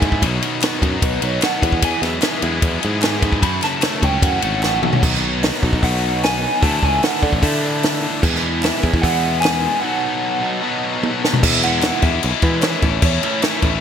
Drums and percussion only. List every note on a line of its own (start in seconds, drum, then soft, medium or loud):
0.02 kick medium
0.02 ride medium
0.12 kick medium
0.22 kick medium
0.22 ride medium
0.42 ride medium
0.62 snare loud
0.62 clap medium
0.62 ride loud
0.82 kick medium
0.82 ride medium
1.02 kick loud
1.02 ride loud
1.22 ride medium
1.42 snare loud
1.42 clap loud
1.42 ride medium
1.62 kick medium
1.62 ride medium
1.72 kick medium
1.82 kick loud
1.82 ride loud
2.03 snare soft
2.03 ride medium
2.22 snare loud
2.22 clap medium
2.22 ride medium
2.42 ride medium
2.62 kick loud
2.62 ride loud
2.83 ride medium
3.02 snare loud
3.02 clap medium
3.02 ride medium
3.22 kick medium
3.22 ride medium
3.32 kick medium
3.43 kick loud
3.43 ride medium
3.62 snare soft
3.62 clap medium
3.62 ride medium
3.82 snare loud
3.82 clap medium
3.82 ride medium
4.02 kick medium
4.02 ride medium
4.22 kick loud
4.22 ride loud
4.42 ride medium
4.63 snare medium
4.63 clap medium
4.83 mid tom medium
4.93 floor tom medium
5.03 kick loud
5.03 crash loud
5.14 snare soft
5.43 snare loud
5.43 open hi-hat medium
5.55 snare soft
5.63 kick medium
5.73 kick medium
5.83 kick medium
5.83 open hi-hat medium
6.23 snare loud
6.23 open hi-hat soft
6.62 kick loud
6.62 open hi-hat medium
6.83 kick medium
7.03 snare loud
7.03 open hi-hat medium
7.23 kick medium
7.33 kick medium
7.43 kick loud
7.43 open hi-hat medium
7.83 snare loud
7.83 open hi-hat medium
8.23 kick loud
8.23 crash medium
8.35 snare soft
8.63 snare loud
8.63 clap medium
8.63 open hi-hat medium
8.75 snare soft
8.83 kick medium
8.83 clap medium
8.94 kick medium
9.03 kick loud
9.03 open hi-hat medium
9.43 snare loud
9.43 clap medium
9.43 open hi-hat medium
11.03 high tom medium
11.25 snare medium
11.33 floor tom loud
11.43 kick loud
11.43 crash loud
11.43 crash medium
11.63 crash medium
11.82 snare loud
11.82 clap medium
11.82 crash medium
12.02 kick medium
12.02 crash medium
12.23 crash medium
12.42 kick medium
12.42 crash medium
12.62 snare loud
12.62 clap medium
12.62 crash medium
12.82 kick medium
12.82 crash medium
13.02 kick loud
13.02 crash medium
13.23 crash medium
13.42 snare loud
13.42 clap medium
13.42 crash medium
13.62 kick medium
13.62 crash medium